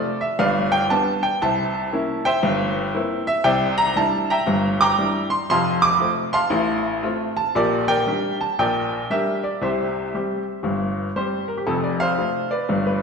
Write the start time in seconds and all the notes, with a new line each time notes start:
Already playing: A3 C4 F4 A4 D5
0.21 E5
0.39 G1 G2 B4 D5 F5
0.72 G5
0.90 G3 B3 D4 A5
1.23 G5
1.42 C2 C3 A5
1.93 A#3 C#4 E4
2.25 C5 E5 G5
2.43 G1 G2
2.94 A#3 C4 E4
3.27 E5
3.44 C2 C3 D5 E5 G5
3.78 A#5
3.96 G3 D4 E4 A5
4.30 E5 G5 A#5
4.47 G1 G2
4.81 G5 A#5 D6
4.98 G3 D4 E4
5.30 C6
5.50 F1 F2 F5 A5 C6
5.82 D6
5.99 A3 C4 F4
6.33 F5 A5 C6
6.50 A1 A2
7.03 A3 C4 F4
7.37 A5
7.55 A#1 A#2 G4 A#4 D5
7.88 A#4 D5 G5
8.07 G3 D4 G4
8.41 A5
8.59 A#1 A#2 A#4 D5 G5
9.10 G3 D4 G4 A#4 E5
9.44 D5
9.61 C2 C3 G4 C5 E5
10.14 G3 C4 G4
10.63 G1 G2
11.16 G3 C4 G4 C5
11.48 A#4
11.57 G4
11.66 F1 F2 A4
11.84 D5
12.00 C5 F5
12.18 A3 C4 F4
12.51 B4 D5
12.69 G1 G2
12.86 B4